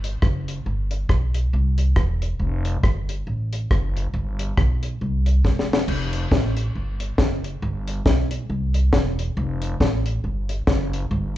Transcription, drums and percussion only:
0, 0, Header, 1, 2, 480
1, 0, Start_track
1, 0, Tempo, 435414
1, 724, Time_signature, 4, 2, 24, 8
1, 12541, End_track
2, 0, Start_track
2, 0, Title_t, "Drums"
2, 44, Note_on_c, 9, 42, 88
2, 154, Note_off_c, 9, 42, 0
2, 245, Note_on_c, 9, 37, 101
2, 248, Note_on_c, 9, 36, 111
2, 355, Note_off_c, 9, 37, 0
2, 358, Note_off_c, 9, 36, 0
2, 531, Note_on_c, 9, 42, 79
2, 641, Note_off_c, 9, 42, 0
2, 1001, Note_on_c, 9, 42, 96
2, 1112, Note_off_c, 9, 42, 0
2, 1205, Note_on_c, 9, 36, 113
2, 1207, Note_on_c, 9, 37, 111
2, 1315, Note_off_c, 9, 36, 0
2, 1317, Note_off_c, 9, 37, 0
2, 1482, Note_on_c, 9, 42, 87
2, 1592, Note_off_c, 9, 42, 0
2, 1961, Note_on_c, 9, 42, 90
2, 2071, Note_off_c, 9, 42, 0
2, 2162, Note_on_c, 9, 37, 108
2, 2165, Note_on_c, 9, 36, 102
2, 2272, Note_off_c, 9, 37, 0
2, 2275, Note_off_c, 9, 36, 0
2, 2446, Note_on_c, 9, 42, 77
2, 2557, Note_off_c, 9, 42, 0
2, 2921, Note_on_c, 9, 42, 94
2, 3031, Note_off_c, 9, 42, 0
2, 3125, Note_on_c, 9, 36, 114
2, 3128, Note_on_c, 9, 37, 110
2, 3235, Note_off_c, 9, 36, 0
2, 3238, Note_off_c, 9, 37, 0
2, 3407, Note_on_c, 9, 42, 87
2, 3517, Note_off_c, 9, 42, 0
2, 3888, Note_on_c, 9, 42, 92
2, 3998, Note_off_c, 9, 42, 0
2, 4087, Note_on_c, 9, 36, 107
2, 4088, Note_on_c, 9, 37, 108
2, 4197, Note_off_c, 9, 36, 0
2, 4199, Note_off_c, 9, 37, 0
2, 4372, Note_on_c, 9, 42, 76
2, 4482, Note_off_c, 9, 42, 0
2, 4844, Note_on_c, 9, 42, 93
2, 4954, Note_off_c, 9, 42, 0
2, 5043, Note_on_c, 9, 37, 109
2, 5044, Note_on_c, 9, 36, 113
2, 5153, Note_off_c, 9, 37, 0
2, 5154, Note_off_c, 9, 36, 0
2, 5322, Note_on_c, 9, 42, 82
2, 5432, Note_off_c, 9, 42, 0
2, 5801, Note_on_c, 9, 42, 90
2, 5911, Note_off_c, 9, 42, 0
2, 6004, Note_on_c, 9, 36, 108
2, 6005, Note_on_c, 9, 38, 61
2, 6114, Note_off_c, 9, 36, 0
2, 6116, Note_off_c, 9, 38, 0
2, 6166, Note_on_c, 9, 38, 66
2, 6276, Note_off_c, 9, 38, 0
2, 6320, Note_on_c, 9, 38, 111
2, 6431, Note_off_c, 9, 38, 0
2, 6482, Note_on_c, 9, 49, 86
2, 6592, Note_off_c, 9, 49, 0
2, 6757, Note_on_c, 9, 42, 93
2, 6868, Note_off_c, 9, 42, 0
2, 6962, Note_on_c, 9, 36, 123
2, 6965, Note_on_c, 9, 38, 112
2, 7072, Note_off_c, 9, 36, 0
2, 7075, Note_off_c, 9, 38, 0
2, 7239, Note_on_c, 9, 42, 90
2, 7349, Note_off_c, 9, 42, 0
2, 7718, Note_on_c, 9, 42, 93
2, 7828, Note_off_c, 9, 42, 0
2, 7917, Note_on_c, 9, 38, 112
2, 7921, Note_on_c, 9, 36, 109
2, 8027, Note_off_c, 9, 38, 0
2, 8031, Note_off_c, 9, 36, 0
2, 8206, Note_on_c, 9, 42, 80
2, 8316, Note_off_c, 9, 42, 0
2, 8682, Note_on_c, 9, 42, 92
2, 8793, Note_off_c, 9, 42, 0
2, 8882, Note_on_c, 9, 36, 121
2, 8883, Note_on_c, 9, 38, 110
2, 8992, Note_off_c, 9, 36, 0
2, 8994, Note_off_c, 9, 38, 0
2, 9160, Note_on_c, 9, 42, 92
2, 9270, Note_off_c, 9, 42, 0
2, 9639, Note_on_c, 9, 42, 94
2, 9749, Note_off_c, 9, 42, 0
2, 9841, Note_on_c, 9, 38, 109
2, 9845, Note_on_c, 9, 36, 106
2, 9952, Note_off_c, 9, 38, 0
2, 9955, Note_off_c, 9, 36, 0
2, 10130, Note_on_c, 9, 42, 77
2, 10241, Note_off_c, 9, 42, 0
2, 10602, Note_on_c, 9, 42, 98
2, 10712, Note_off_c, 9, 42, 0
2, 10808, Note_on_c, 9, 36, 118
2, 10812, Note_on_c, 9, 38, 117
2, 10918, Note_off_c, 9, 36, 0
2, 10922, Note_off_c, 9, 38, 0
2, 11087, Note_on_c, 9, 42, 90
2, 11198, Note_off_c, 9, 42, 0
2, 11566, Note_on_c, 9, 42, 92
2, 11677, Note_off_c, 9, 42, 0
2, 11765, Note_on_c, 9, 38, 118
2, 11768, Note_on_c, 9, 36, 113
2, 11876, Note_off_c, 9, 38, 0
2, 11878, Note_off_c, 9, 36, 0
2, 12054, Note_on_c, 9, 42, 82
2, 12164, Note_off_c, 9, 42, 0
2, 12541, End_track
0, 0, End_of_file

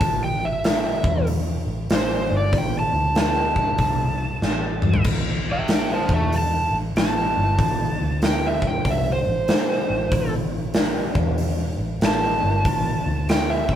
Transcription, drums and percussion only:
0, 0, Header, 1, 2, 480
1, 0, Start_track
1, 0, Key_signature, 0, "minor"
1, 0, Tempo, 632244
1, 13, Time_signature, 4, 2, 24, 8
1, 10443, End_track
2, 0, Start_track
2, 0, Title_t, "Drums"
2, 5, Note_on_c, 9, 46, 58
2, 6, Note_on_c, 9, 36, 111
2, 81, Note_off_c, 9, 46, 0
2, 82, Note_off_c, 9, 36, 0
2, 488, Note_on_c, 9, 46, 59
2, 495, Note_on_c, 9, 38, 104
2, 564, Note_off_c, 9, 46, 0
2, 571, Note_off_c, 9, 38, 0
2, 790, Note_on_c, 9, 36, 100
2, 866, Note_off_c, 9, 36, 0
2, 964, Note_on_c, 9, 46, 55
2, 1040, Note_off_c, 9, 46, 0
2, 1440, Note_on_c, 9, 46, 61
2, 1447, Note_on_c, 9, 38, 110
2, 1516, Note_off_c, 9, 46, 0
2, 1523, Note_off_c, 9, 38, 0
2, 1919, Note_on_c, 9, 36, 103
2, 1923, Note_on_c, 9, 46, 58
2, 1995, Note_off_c, 9, 36, 0
2, 1999, Note_off_c, 9, 46, 0
2, 2394, Note_on_c, 9, 46, 53
2, 2401, Note_on_c, 9, 38, 109
2, 2470, Note_off_c, 9, 46, 0
2, 2477, Note_off_c, 9, 38, 0
2, 2703, Note_on_c, 9, 36, 81
2, 2779, Note_off_c, 9, 36, 0
2, 2871, Note_on_c, 9, 46, 50
2, 2875, Note_on_c, 9, 36, 95
2, 2946, Note_off_c, 9, 46, 0
2, 2951, Note_off_c, 9, 36, 0
2, 3358, Note_on_c, 9, 38, 63
2, 3434, Note_off_c, 9, 38, 0
2, 3660, Note_on_c, 9, 45, 83
2, 3736, Note_off_c, 9, 45, 0
2, 3747, Note_on_c, 9, 43, 94
2, 3823, Note_off_c, 9, 43, 0
2, 3829, Note_on_c, 9, 49, 89
2, 3835, Note_on_c, 9, 36, 104
2, 3905, Note_off_c, 9, 49, 0
2, 3911, Note_off_c, 9, 36, 0
2, 4313, Note_on_c, 9, 46, 62
2, 4319, Note_on_c, 9, 38, 110
2, 4389, Note_off_c, 9, 46, 0
2, 4395, Note_off_c, 9, 38, 0
2, 4624, Note_on_c, 9, 36, 99
2, 4700, Note_off_c, 9, 36, 0
2, 4802, Note_on_c, 9, 46, 57
2, 4878, Note_off_c, 9, 46, 0
2, 5284, Note_on_c, 9, 46, 60
2, 5291, Note_on_c, 9, 38, 110
2, 5360, Note_off_c, 9, 46, 0
2, 5367, Note_off_c, 9, 38, 0
2, 5760, Note_on_c, 9, 36, 108
2, 5761, Note_on_c, 9, 46, 58
2, 5836, Note_off_c, 9, 36, 0
2, 5837, Note_off_c, 9, 46, 0
2, 6239, Note_on_c, 9, 46, 57
2, 6246, Note_on_c, 9, 38, 115
2, 6315, Note_off_c, 9, 46, 0
2, 6322, Note_off_c, 9, 38, 0
2, 6545, Note_on_c, 9, 36, 81
2, 6621, Note_off_c, 9, 36, 0
2, 6719, Note_on_c, 9, 36, 101
2, 6721, Note_on_c, 9, 46, 54
2, 6795, Note_off_c, 9, 36, 0
2, 6796, Note_off_c, 9, 46, 0
2, 7197, Note_on_c, 9, 46, 57
2, 7204, Note_on_c, 9, 38, 112
2, 7273, Note_off_c, 9, 46, 0
2, 7280, Note_off_c, 9, 38, 0
2, 7681, Note_on_c, 9, 36, 108
2, 7682, Note_on_c, 9, 46, 57
2, 7757, Note_off_c, 9, 36, 0
2, 7758, Note_off_c, 9, 46, 0
2, 8152, Note_on_c, 9, 46, 60
2, 8158, Note_on_c, 9, 38, 110
2, 8228, Note_off_c, 9, 46, 0
2, 8234, Note_off_c, 9, 38, 0
2, 8467, Note_on_c, 9, 36, 102
2, 8543, Note_off_c, 9, 36, 0
2, 8639, Note_on_c, 9, 46, 54
2, 8715, Note_off_c, 9, 46, 0
2, 9120, Note_on_c, 9, 46, 61
2, 9127, Note_on_c, 9, 38, 114
2, 9196, Note_off_c, 9, 46, 0
2, 9203, Note_off_c, 9, 38, 0
2, 9604, Note_on_c, 9, 36, 109
2, 9605, Note_on_c, 9, 46, 60
2, 9680, Note_off_c, 9, 36, 0
2, 9681, Note_off_c, 9, 46, 0
2, 10089, Note_on_c, 9, 46, 59
2, 10096, Note_on_c, 9, 38, 109
2, 10165, Note_off_c, 9, 46, 0
2, 10171, Note_off_c, 9, 38, 0
2, 10392, Note_on_c, 9, 36, 83
2, 10443, Note_off_c, 9, 36, 0
2, 10443, End_track
0, 0, End_of_file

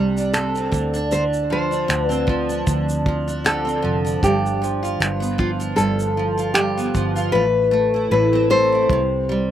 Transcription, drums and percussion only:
0, 0, Header, 1, 2, 480
1, 0, Start_track
1, 0, Tempo, 778210
1, 685, Time_signature, 4, 2, 24, 8
1, 5866, End_track
2, 0, Start_track
2, 0, Title_t, "Drums"
2, 107, Note_on_c, 9, 82, 50
2, 169, Note_off_c, 9, 82, 0
2, 211, Note_on_c, 9, 26, 98
2, 211, Note_on_c, 9, 82, 62
2, 273, Note_off_c, 9, 26, 0
2, 273, Note_off_c, 9, 82, 0
2, 343, Note_on_c, 9, 82, 42
2, 404, Note_off_c, 9, 82, 0
2, 447, Note_on_c, 9, 36, 75
2, 451, Note_on_c, 9, 82, 39
2, 508, Note_off_c, 9, 36, 0
2, 513, Note_off_c, 9, 82, 0
2, 581, Note_on_c, 9, 82, 49
2, 643, Note_off_c, 9, 82, 0
2, 688, Note_on_c, 9, 82, 59
2, 750, Note_off_c, 9, 82, 0
2, 823, Note_on_c, 9, 82, 41
2, 885, Note_off_c, 9, 82, 0
2, 1062, Note_on_c, 9, 82, 44
2, 1124, Note_off_c, 9, 82, 0
2, 1171, Note_on_c, 9, 82, 57
2, 1172, Note_on_c, 9, 26, 87
2, 1232, Note_off_c, 9, 82, 0
2, 1234, Note_off_c, 9, 26, 0
2, 1300, Note_on_c, 9, 82, 49
2, 1362, Note_off_c, 9, 82, 0
2, 1405, Note_on_c, 9, 36, 85
2, 1466, Note_off_c, 9, 36, 0
2, 1540, Note_on_c, 9, 82, 50
2, 1601, Note_off_c, 9, 82, 0
2, 1647, Note_on_c, 9, 36, 87
2, 1647, Note_on_c, 9, 82, 73
2, 1709, Note_off_c, 9, 36, 0
2, 1709, Note_off_c, 9, 82, 0
2, 1784, Note_on_c, 9, 82, 55
2, 1845, Note_off_c, 9, 82, 0
2, 1888, Note_on_c, 9, 36, 80
2, 1949, Note_off_c, 9, 36, 0
2, 2026, Note_on_c, 9, 82, 45
2, 2087, Note_off_c, 9, 82, 0
2, 2134, Note_on_c, 9, 26, 92
2, 2134, Note_on_c, 9, 82, 59
2, 2195, Note_off_c, 9, 82, 0
2, 2196, Note_off_c, 9, 26, 0
2, 2273, Note_on_c, 9, 82, 45
2, 2335, Note_off_c, 9, 82, 0
2, 2506, Note_on_c, 9, 82, 50
2, 2567, Note_off_c, 9, 82, 0
2, 2608, Note_on_c, 9, 36, 98
2, 2613, Note_on_c, 9, 82, 59
2, 2670, Note_off_c, 9, 36, 0
2, 2675, Note_off_c, 9, 82, 0
2, 2752, Note_on_c, 9, 82, 41
2, 2813, Note_off_c, 9, 82, 0
2, 2860, Note_on_c, 9, 82, 48
2, 2921, Note_off_c, 9, 82, 0
2, 2989, Note_on_c, 9, 82, 44
2, 3050, Note_off_c, 9, 82, 0
2, 3096, Note_on_c, 9, 82, 61
2, 3097, Note_on_c, 9, 26, 93
2, 3157, Note_off_c, 9, 82, 0
2, 3159, Note_off_c, 9, 26, 0
2, 3224, Note_on_c, 9, 82, 50
2, 3286, Note_off_c, 9, 82, 0
2, 3325, Note_on_c, 9, 36, 90
2, 3386, Note_off_c, 9, 36, 0
2, 3457, Note_on_c, 9, 82, 51
2, 3518, Note_off_c, 9, 82, 0
2, 3563, Note_on_c, 9, 82, 75
2, 3625, Note_off_c, 9, 82, 0
2, 3699, Note_on_c, 9, 82, 55
2, 3761, Note_off_c, 9, 82, 0
2, 3937, Note_on_c, 9, 82, 46
2, 3999, Note_off_c, 9, 82, 0
2, 4041, Note_on_c, 9, 82, 64
2, 4042, Note_on_c, 9, 26, 96
2, 4103, Note_off_c, 9, 26, 0
2, 4103, Note_off_c, 9, 82, 0
2, 4184, Note_on_c, 9, 82, 44
2, 4245, Note_off_c, 9, 82, 0
2, 4284, Note_on_c, 9, 36, 78
2, 4286, Note_on_c, 9, 82, 40
2, 4346, Note_off_c, 9, 36, 0
2, 4347, Note_off_c, 9, 82, 0
2, 4418, Note_on_c, 9, 82, 48
2, 4480, Note_off_c, 9, 82, 0
2, 5487, Note_on_c, 9, 36, 86
2, 5548, Note_off_c, 9, 36, 0
2, 5866, End_track
0, 0, End_of_file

